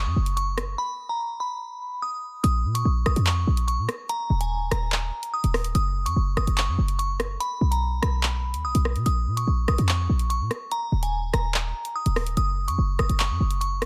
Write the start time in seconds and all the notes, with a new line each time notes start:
Already playing: C#6
0.06 F#2
0.16 F#1
0.26 closed hi-hat
0.37 C#6, closed hi-hat
0.58 cross-stick, closed hi-hat
0.78 B5
1.09 A#5
1.40 B5
2.02 D#6
2.44 A#1 D#6, closed hi-hat
2.65 A#2
2.75 C#6, closed hi-hat
2.85 A#1
3.06 A#1 D#6, cross-stick, closed hi-hat
3.16 F2, closed hi-hat
3.27 C#6, clap, closed hi-hat
3.47 A#1
3.57 closed hi-hat
3.68 C#6, closed hi-hat
3.78 A#2
3.89 cross-stick, closed hi-hat
4.09 A#5, closed hi-hat
4.30 D#1
4.41 G#5, closed hi-hat
4.71 D#1 A#5, cross-stick, closed hi-hat
4.92 clap
5.23 closed hi-hat
5.34 D#6
5.44 D#1, closed hi-hat
5.54 cross-stick, open hi-hat
5.64 closed hi-hat
5.75 F#1 D#6, closed hi-hat
6.06 F#2 C#6, closed hi-hat
6.16 F#1
6.37 F#1 D#6, cross-stick, closed hi-hat
6.47 F#1, closed hi-hat
6.58 C#6, clap, closed hi-hat
6.68 F#2
6.78 F#1
6.88 closed hi-hat
6.99 C#6, closed hi-hat
7.20 cross-stick, closed hi-hat
7.40 B5, closed hi-hat
7.61 B1
7.71 A#5, closed hi-hat
8.02 B1 B5, cross-stick, closed hi-hat
8.23 clap
8.54 D#2, closed hi-hat
8.65 B1 D#6
8.75 B1, closed hi-hat
8.85 cross-stick
8.96 B2, closed hi-hat
9.06 A#1 D#6, closed hi-hat
9.27 A#2
9.37 C#6, closed hi-hat
9.47 A#1
9.68 A#1 D#6, cross-stick, closed hi-hat
9.78 F2, closed hi-hat
9.89 C#6, clap, closed hi-hat
10.09 A#1
10.19 closed hi-hat
10.30 C#6, closed hi-hat
10.40 A#2
10.51 cross-stick, closed hi-hat
10.71 A#5, closed hi-hat
10.92 D#1
11.03 G#5, closed hi-hat
11.34 D#1 A#5, cross-stick, closed hi-hat
11.54 clap
11.85 closed hi-hat
11.96 D#6
12.06 D#1, closed hi-hat
12.16 cross-stick, open hi-hat
12.27 closed hi-hat
12.37 F#1 D#6, closed hi-hat
12.68 F#2 C#6, closed hi-hat
12.78 F#1
12.99 F#1 D#6, cross-stick, closed hi-hat
13.09 F#1, closed hi-hat
13.20 C#6, clap, closed hi-hat
13.30 F#2
13.40 F#1
13.51 closed hi-hat
13.61 C#6, closed hi-hat
13.82 cross-stick, closed hi-hat